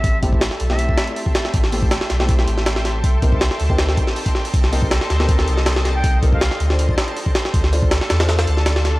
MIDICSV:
0, 0, Header, 1, 7, 480
1, 0, Start_track
1, 0, Tempo, 375000
1, 54, Time_signature, 4, 2, 24, 8
1, 11514, End_track
2, 0, Start_track
2, 0, Title_t, "Ambient pad"
2, 0, Program_c, 0, 92
2, 0, Note_on_c, 0, 76, 81
2, 0, Note_on_c, 0, 79, 77
2, 0, Note_on_c, 0, 81, 76
2, 0, Note_on_c, 0, 84, 93
2, 3842, Note_off_c, 0, 76, 0
2, 3842, Note_off_c, 0, 81, 0
2, 3885, Note_on_c, 0, 75, 85
2, 8641, Note_off_c, 0, 75, 0
2, 8641, Note_off_c, 0, 79, 0
2, 8685, Note_on_c, 0, 74, 86
2, 8687, Note_on_c, 0, 77, 79
2, 8687, Note_on_c, 0, 81, 78
2, 10561, Note_off_c, 0, 84, 0
2, 10611, Note_on_c, 0, 83, 95
2, 11514, Note_off_c, 0, 74, 0
2, 11514, Note_off_c, 0, 77, 0
2, 11514, Note_off_c, 0, 81, 0
2, 11514, Note_off_c, 0, 83, 0
2, 11514, End_track
3, 0, Start_track
3, 0, Title_t, "Flute"
3, 0, Program_c, 1, 73
3, 0, Note_on_c, 1, 76, 91
3, 228, Note_off_c, 1, 76, 0
3, 899, Note_on_c, 1, 76, 89
3, 1380, Note_off_c, 1, 76, 0
3, 7613, Note_on_c, 1, 79, 92
3, 7902, Note_off_c, 1, 79, 0
3, 8094, Note_on_c, 1, 77, 92
3, 8450, Note_off_c, 1, 77, 0
3, 11514, End_track
4, 0, Start_track
4, 0, Title_t, "Synth texture"
4, 0, Program_c, 2, 99
4, 0, Note_on_c, 2, 69, 82
4, 0, Note_on_c, 2, 81, 84
4, 11514, Note_off_c, 2, 69, 0
4, 11514, Note_off_c, 2, 81, 0
4, 11514, End_track
5, 0, Start_track
5, 0, Title_t, "Grand piano"
5, 0, Program_c, 3, 0
5, 0, Note_on_c, 3, 57, 83
5, 0, Note_on_c, 3, 60, 75
5, 0, Note_on_c, 3, 64, 73
5, 0, Note_on_c, 3, 67, 85
5, 265, Note_off_c, 3, 57, 0
5, 265, Note_off_c, 3, 60, 0
5, 265, Note_off_c, 3, 64, 0
5, 265, Note_off_c, 3, 67, 0
5, 289, Note_on_c, 3, 57, 84
5, 289, Note_on_c, 3, 60, 82
5, 289, Note_on_c, 3, 64, 79
5, 289, Note_on_c, 3, 67, 93
5, 494, Note_off_c, 3, 57, 0
5, 494, Note_off_c, 3, 60, 0
5, 494, Note_off_c, 3, 64, 0
5, 494, Note_off_c, 3, 67, 0
5, 895, Note_on_c, 3, 57, 81
5, 896, Note_on_c, 3, 67, 91
5, 897, Note_on_c, 3, 60, 71
5, 897, Note_on_c, 3, 64, 77
5, 2184, Note_off_c, 3, 57, 0
5, 2184, Note_off_c, 3, 60, 0
5, 2184, Note_off_c, 3, 64, 0
5, 2184, Note_off_c, 3, 67, 0
5, 2209, Note_on_c, 3, 57, 84
5, 2209, Note_on_c, 3, 60, 78
5, 2209, Note_on_c, 3, 64, 74
5, 2209, Note_on_c, 3, 67, 94
5, 2414, Note_off_c, 3, 57, 0
5, 2414, Note_off_c, 3, 60, 0
5, 2414, Note_off_c, 3, 64, 0
5, 2414, Note_off_c, 3, 67, 0
5, 2816, Note_on_c, 3, 57, 79
5, 2816, Note_on_c, 3, 60, 74
5, 2816, Note_on_c, 3, 64, 77
5, 2816, Note_on_c, 3, 67, 90
5, 3877, Note_off_c, 3, 57, 0
5, 3877, Note_off_c, 3, 60, 0
5, 3878, Note_off_c, 3, 64, 0
5, 3878, Note_off_c, 3, 67, 0
5, 4127, Note_on_c, 3, 60, 86
5, 4127, Note_on_c, 3, 67, 81
5, 4128, Note_on_c, 3, 63, 76
5, 4128, Note_on_c, 3, 70, 94
5, 4333, Note_off_c, 3, 60, 0
5, 4333, Note_off_c, 3, 63, 0
5, 4333, Note_off_c, 3, 67, 0
5, 4333, Note_off_c, 3, 70, 0
5, 4735, Note_on_c, 3, 63, 75
5, 4735, Note_on_c, 3, 70, 85
5, 4736, Note_on_c, 3, 60, 81
5, 4736, Note_on_c, 3, 67, 77
5, 6024, Note_off_c, 3, 60, 0
5, 6024, Note_off_c, 3, 63, 0
5, 6024, Note_off_c, 3, 67, 0
5, 6024, Note_off_c, 3, 70, 0
5, 6047, Note_on_c, 3, 60, 86
5, 6047, Note_on_c, 3, 67, 76
5, 6048, Note_on_c, 3, 63, 80
5, 6049, Note_on_c, 3, 70, 91
5, 6253, Note_off_c, 3, 60, 0
5, 6253, Note_off_c, 3, 63, 0
5, 6253, Note_off_c, 3, 67, 0
5, 6254, Note_off_c, 3, 70, 0
5, 6654, Note_on_c, 3, 60, 80
5, 6654, Note_on_c, 3, 63, 70
5, 6654, Note_on_c, 3, 67, 73
5, 6654, Note_on_c, 3, 70, 88
5, 7943, Note_off_c, 3, 60, 0
5, 7943, Note_off_c, 3, 63, 0
5, 7943, Note_off_c, 3, 67, 0
5, 7943, Note_off_c, 3, 70, 0
5, 7969, Note_on_c, 3, 60, 84
5, 7969, Note_on_c, 3, 63, 78
5, 7969, Note_on_c, 3, 67, 76
5, 7969, Note_on_c, 3, 70, 94
5, 8174, Note_off_c, 3, 60, 0
5, 8174, Note_off_c, 3, 63, 0
5, 8174, Note_off_c, 3, 67, 0
5, 8174, Note_off_c, 3, 70, 0
5, 8576, Note_on_c, 3, 65, 71
5, 8577, Note_on_c, 3, 62, 80
5, 8578, Note_on_c, 3, 69, 74
5, 8578, Note_on_c, 3, 72, 90
5, 9864, Note_off_c, 3, 62, 0
5, 9864, Note_off_c, 3, 65, 0
5, 9865, Note_off_c, 3, 69, 0
5, 9865, Note_off_c, 3, 72, 0
5, 9889, Note_on_c, 3, 62, 87
5, 9889, Note_on_c, 3, 72, 96
5, 9890, Note_on_c, 3, 65, 80
5, 9890, Note_on_c, 3, 69, 82
5, 10094, Note_off_c, 3, 62, 0
5, 10094, Note_off_c, 3, 65, 0
5, 10094, Note_off_c, 3, 72, 0
5, 10095, Note_off_c, 3, 69, 0
5, 10497, Note_on_c, 3, 69, 75
5, 10498, Note_on_c, 3, 65, 74
5, 10498, Note_on_c, 3, 72, 91
5, 10499, Note_on_c, 3, 62, 86
5, 11514, Note_off_c, 3, 62, 0
5, 11514, Note_off_c, 3, 65, 0
5, 11514, Note_off_c, 3, 69, 0
5, 11514, Note_off_c, 3, 72, 0
5, 11514, End_track
6, 0, Start_track
6, 0, Title_t, "Sub bass"
6, 0, Program_c, 4, 38
6, 50, Note_on_c, 4, 33, 103
6, 639, Note_off_c, 4, 33, 0
6, 772, Note_on_c, 4, 35, 92
6, 1234, Note_off_c, 4, 35, 0
6, 1968, Note_on_c, 4, 33, 97
6, 2558, Note_off_c, 4, 33, 0
6, 2692, Note_on_c, 4, 35, 94
6, 3154, Note_off_c, 4, 35, 0
6, 3173, Note_on_c, 4, 33, 85
6, 3875, Note_off_c, 4, 33, 0
6, 3888, Note_on_c, 4, 36, 99
6, 4478, Note_off_c, 4, 36, 0
6, 4610, Note_on_c, 4, 38, 93
6, 5074, Note_off_c, 4, 38, 0
6, 5806, Note_on_c, 4, 36, 97
6, 6397, Note_off_c, 4, 36, 0
6, 6527, Note_on_c, 4, 38, 93
6, 6992, Note_off_c, 4, 38, 0
6, 7009, Note_on_c, 4, 36, 87
6, 7713, Note_off_c, 4, 36, 0
6, 7730, Note_on_c, 4, 36, 99
6, 8318, Note_off_c, 4, 36, 0
6, 8447, Note_on_c, 4, 38, 98
6, 8912, Note_off_c, 4, 38, 0
6, 9648, Note_on_c, 4, 38, 103
6, 10238, Note_off_c, 4, 38, 0
6, 10373, Note_on_c, 4, 40, 95
6, 10835, Note_off_c, 4, 40, 0
6, 10851, Note_on_c, 4, 38, 88
6, 11514, Note_off_c, 4, 38, 0
6, 11514, End_track
7, 0, Start_track
7, 0, Title_t, "Drums"
7, 50, Note_on_c, 9, 36, 113
7, 50, Note_on_c, 9, 46, 85
7, 178, Note_off_c, 9, 36, 0
7, 178, Note_off_c, 9, 46, 0
7, 290, Note_on_c, 9, 36, 92
7, 290, Note_on_c, 9, 46, 66
7, 417, Note_off_c, 9, 36, 0
7, 417, Note_on_c, 9, 36, 93
7, 418, Note_off_c, 9, 46, 0
7, 528, Note_on_c, 9, 38, 113
7, 528, Note_on_c, 9, 46, 84
7, 545, Note_off_c, 9, 36, 0
7, 654, Note_off_c, 9, 38, 0
7, 654, Note_on_c, 9, 38, 45
7, 656, Note_off_c, 9, 46, 0
7, 766, Note_on_c, 9, 46, 69
7, 782, Note_off_c, 9, 38, 0
7, 893, Note_on_c, 9, 38, 43
7, 894, Note_off_c, 9, 46, 0
7, 1007, Note_on_c, 9, 46, 86
7, 1021, Note_off_c, 9, 38, 0
7, 1135, Note_off_c, 9, 46, 0
7, 1137, Note_on_c, 9, 36, 94
7, 1248, Note_on_c, 9, 38, 115
7, 1248, Note_on_c, 9, 46, 65
7, 1265, Note_off_c, 9, 36, 0
7, 1375, Note_on_c, 9, 42, 44
7, 1376, Note_off_c, 9, 38, 0
7, 1376, Note_off_c, 9, 46, 0
7, 1489, Note_on_c, 9, 46, 69
7, 1503, Note_off_c, 9, 42, 0
7, 1616, Note_on_c, 9, 36, 83
7, 1617, Note_off_c, 9, 46, 0
7, 1727, Note_on_c, 9, 38, 106
7, 1727, Note_on_c, 9, 46, 78
7, 1744, Note_off_c, 9, 36, 0
7, 1855, Note_off_c, 9, 38, 0
7, 1855, Note_off_c, 9, 46, 0
7, 1856, Note_on_c, 9, 38, 52
7, 1968, Note_on_c, 9, 46, 88
7, 1969, Note_on_c, 9, 36, 111
7, 1984, Note_off_c, 9, 38, 0
7, 2095, Note_on_c, 9, 38, 47
7, 2096, Note_off_c, 9, 46, 0
7, 2097, Note_off_c, 9, 36, 0
7, 2207, Note_on_c, 9, 46, 74
7, 2223, Note_off_c, 9, 38, 0
7, 2335, Note_off_c, 9, 46, 0
7, 2336, Note_on_c, 9, 36, 101
7, 2447, Note_on_c, 9, 38, 112
7, 2447, Note_on_c, 9, 46, 87
7, 2464, Note_off_c, 9, 36, 0
7, 2575, Note_off_c, 9, 38, 0
7, 2575, Note_off_c, 9, 46, 0
7, 2575, Note_on_c, 9, 38, 54
7, 2687, Note_off_c, 9, 38, 0
7, 2687, Note_on_c, 9, 38, 39
7, 2687, Note_on_c, 9, 46, 70
7, 2815, Note_off_c, 9, 38, 0
7, 2815, Note_off_c, 9, 46, 0
7, 2816, Note_on_c, 9, 38, 56
7, 2927, Note_on_c, 9, 46, 83
7, 2929, Note_on_c, 9, 36, 107
7, 2944, Note_off_c, 9, 38, 0
7, 3055, Note_off_c, 9, 46, 0
7, 3056, Note_on_c, 9, 38, 48
7, 3057, Note_off_c, 9, 36, 0
7, 3168, Note_on_c, 9, 46, 68
7, 3184, Note_off_c, 9, 38, 0
7, 3296, Note_off_c, 9, 46, 0
7, 3296, Note_on_c, 9, 38, 37
7, 3407, Note_off_c, 9, 38, 0
7, 3407, Note_on_c, 9, 38, 116
7, 3407, Note_on_c, 9, 46, 83
7, 3535, Note_off_c, 9, 38, 0
7, 3535, Note_off_c, 9, 46, 0
7, 3535, Note_on_c, 9, 38, 53
7, 3648, Note_off_c, 9, 38, 0
7, 3648, Note_on_c, 9, 38, 39
7, 3648, Note_on_c, 9, 46, 66
7, 3776, Note_off_c, 9, 38, 0
7, 3776, Note_off_c, 9, 46, 0
7, 3888, Note_on_c, 9, 36, 111
7, 3888, Note_on_c, 9, 46, 90
7, 4016, Note_off_c, 9, 36, 0
7, 4016, Note_off_c, 9, 46, 0
7, 4126, Note_on_c, 9, 46, 66
7, 4127, Note_on_c, 9, 36, 94
7, 4254, Note_off_c, 9, 36, 0
7, 4254, Note_off_c, 9, 46, 0
7, 4254, Note_on_c, 9, 36, 98
7, 4366, Note_on_c, 9, 38, 116
7, 4366, Note_on_c, 9, 46, 83
7, 4382, Note_off_c, 9, 36, 0
7, 4493, Note_off_c, 9, 38, 0
7, 4493, Note_on_c, 9, 38, 45
7, 4494, Note_off_c, 9, 46, 0
7, 4604, Note_on_c, 9, 46, 74
7, 4621, Note_off_c, 9, 38, 0
7, 4732, Note_off_c, 9, 46, 0
7, 4733, Note_on_c, 9, 36, 88
7, 4845, Note_on_c, 9, 38, 99
7, 4845, Note_on_c, 9, 46, 76
7, 4861, Note_off_c, 9, 36, 0
7, 4973, Note_off_c, 9, 38, 0
7, 4973, Note_off_c, 9, 46, 0
7, 4975, Note_on_c, 9, 38, 50
7, 5086, Note_on_c, 9, 36, 99
7, 5086, Note_on_c, 9, 46, 77
7, 5103, Note_off_c, 9, 38, 0
7, 5214, Note_off_c, 9, 36, 0
7, 5214, Note_off_c, 9, 46, 0
7, 5214, Note_on_c, 9, 38, 41
7, 5327, Note_on_c, 9, 46, 70
7, 5342, Note_off_c, 9, 38, 0
7, 5453, Note_off_c, 9, 46, 0
7, 5453, Note_on_c, 9, 36, 92
7, 5453, Note_on_c, 9, 46, 75
7, 5567, Note_on_c, 9, 38, 38
7, 5581, Note_off_c, 9, 36, 0
7, 5581, Note_off_c, 9, 46, 0
7, 5695, Note_off_c, 9, 38, 0
7, 5695, Note_on_c, 9, 46, 75
7, 5806, Note_on_c, 9, 36, 113
7, 5808, Note_off_c, 9, 46, 0
7, 5808, Note_on_c, 9, 46, 90
7, 5934, Note_off_c, 9, 36, 0
7, 5936, Note_off_c, 9, 46, 0
7, 5937, Note_on_c, 9, 38, 45
7, 6050, Note_on_c, 9, 46, 81
7, 6065, Note_off_c, 9, 38, 0
7, 6174, Note_on_c, 9, 36, 94
7, 6178, Note_off_c, 9, 46, 0
7, 6288, Note_on_c, 9, 38, 118
7, 6288, Note_on_c, 9, 46, 87
7, 6302, Note_off_c, 9, 36, 0
7, 6416, Note_off_c, 9, 38, 0
7, 6416, Note_off_c, 9, 46, 0
7, 6416, Note_on_c, 9, 38, 51
7, 6529, Note_off_c, 9, 38, 0
7, 6529, Note_on_c, 9, 38, 38
7, 6529, Note_on_c, 9, 46, 68
7, 6656, Note_off_c, 9, 38, 0
7, 6656, Note_on_c, 9, 38, 57
7, 6657, Note_off_c, 9, 46, 0
7, 6767, Note_on_c, 9, 36, 105
7, 6768, Note_on_c, 9, 46, 82
7, 6784, Note_off_c, 9, 38, 0
7, 6895, Note_off_c, 9, 36, 0
7, 6896, Note_off_c, 9, 46, 0
7, 6898, Note_on_c, 9, 38, 49
7, 7009, Note_on_c, 9, 46, 66
7, 7026, Note_off_c, 9, 38, 0
7, 7135, Note_on_c, 9, 38, 38
7, 7137, Note_off_c, 9, 46, 0
7, 7247, Note_off_c, 9, 38, 0
7, 7247, Note_on_c, 9, 38, 115
7, 7247, Note_on_c, 9, 46, 87
7, 7375, Note_off_c, 9, 38, 0
7, 7375, Note_off_c, 9, 46, 0
7, 7377, Note_on_c, 9, 38, 57
7, 7490, Note_off_c, 9, 38, 0
7, 7490, Note_on_c, 9, 38, 43
7, 7490, Note_on_c, 9, 46, 65
7, 7618, Note_off_c, 9, 38, 0
7, 7618, Note_off_c, 9, 46, 0
7, 7729, Note_on_c, 9, 36, 107
7, 7729, Note_on_c, 9, 46, 90
7, 7857, Note_off_c, 9, 36, 0
7, 7857, Note_off_c, 9, 46, 0
7, 7968, Note_on_c, 9, 36, 92
7, 7969, Note_on_c, 9, 46, 67
7, 8096, Note_off_c, 9, 36, 0
7, 8096, Note_on_c, 9, 36, 99
7, 8097, Note_off_c, 9, 46, 0
7, 8208, Note_on_c, 9, 38, 119
7, 8208, Note_on_c, 9, 46, 85
7, 8224, Note_off_c, 9, 36, 0
7, 8336, Note_off_c, 9, 38, 0
7, 8336, Note_off_c, 9, 46, 0
7, 8337, Note_on_c, 9, 38, 47
7, 8450, Note_on_c, 9, 46, 70
7, 8465, Note_off_c, 9, 38, 0
7, 8578, Note_off_c, 9, 46, 0
7, 8578, Note_on_c, 9, 38, 44
7, 8691, Note_on_c, 9, 46, 86
7, 8706, Note_off_c, 9, 38, 0
7, 8817, Note_on_c, 9, 36, 96
7, 8819, Note_off_c, 9, 46, 0
7, 8932, Note_on_c, 9, 38, 117
7, 8932, Note_on_c, 9, 46, 69
7, 8945, Note_off_c, 9, 36, 0
7, 9060, Note_off_c, 9, 38, 0
7, 9060, Note_off_c, 9, 46, 0
7, 9060, Note_on_c, 9, 42, 45
7, 9172, Note_on_c, 9, 46, 70
7, 9188, Note_off_c, 9, 42, 0
7, 9296, Note_on_c, 9, 36, 83
7, 9300, Note_off_c, 9, 46, 0
7, 9409, Note_on_c, 9, 38, 98
7, 9409, Note_on_c, 9, 46, 77
7, 9424, Note_off_c, 9, 36, 0
7, 9537, Note_off_c, 9, 38, 0
7, 9537, Note_off_c, 9, 46, 0
7, 9538, Note_on_c, 9, 38, 51
7, 9649, Note_on_c, 9, 36, 109
7, 9650, Note_on_c, 9, 46, 88
7, 9666, Note_off_c, 9, 38, 0
7, 9777, Note_off_c, 9, 36, 0
7, 9778, Note_off_c, 9, 46, 0
7, 9778, Note_on_c, 9, 38, 44
7, 9891, Note_on_c, 9, 46, 79
7, 9906, Note_off_c, 9, 38, 0
7, 10016, Note_on_c, 9, 36, 95
7, 10019, Note_off_c, 9, 46, 0
7, 10128, Note_on_c, 9, 38, 120
7, 10128, Note_on_c, 9, 46, 88
7, 10144, Note_off_c, 9, 36, 0
7, 10256, Note_off_c, 9, 38, 0
7, 10256, Note_off_c, 9, 46, 0
7, 10257, Note_on_c, 9, 38, 53
7, 10368, Note_off_c, 9, 38, 0
7, 10368, Note_on_c, 9, 38, 106
7, 10368, Note_on_c, 9, 46, 84
7, 10496, Note_off_c, 9, 38, 0
7, 10496, Note_off_c, 9, 46, 0
7, 10496, Note_on_c, 9, 38, 107
7, 10496, Note_on_c, 9, 46, 84
7, 10607, Note_off_c, 9, 38, 0
7, 10607, Note_off_c, 9, 46, 0
7, 10607, Note_on_c, 9, 38, 106
7, 10607, Note_on_c, 9, 46, 75
7, 10735, Note_off_c, 9, 38, 0
7, 10735, Note_off_c, 9, 46, 0
7, 10735, Note_on_c, 9, 38, 109
7, 10735, Note_on_c, 9, 46, 81
7, 10847, Note_off_c, 9, 46, 0
7, 10847, Note_on_c, 9, 46, 70
7, 10863, Note_off_c, 9, 38, 0
7, 10974, Note_on_c, 9, 38, 37
7, 10975, Note_off_c, 9, 46, 0
7, 11085, Note_off_c, 9, 38, 0
7, 11085, Note_on_c, 9, 38, 111
7, 11085, Note_on_c, 9, 46, 88
7, 11213, Note_off_c, 9, 38, 0
7, 11213, Note_off_c, 9, 46, 0
7, 11215, Note_on_c, 9, 38, 56
7, 11328, Note_off_c, 9, 38, 0
7, 11328, Note_on_c, 9, 38, 42
7, 11328, Note_on_c, 9, 46, 64
7, 11456, Note_off_c, 9, 38, 0
7, 11456, Note_off_c, 9, 46, 0
7, 11514, End_track
0, 0, End_of_file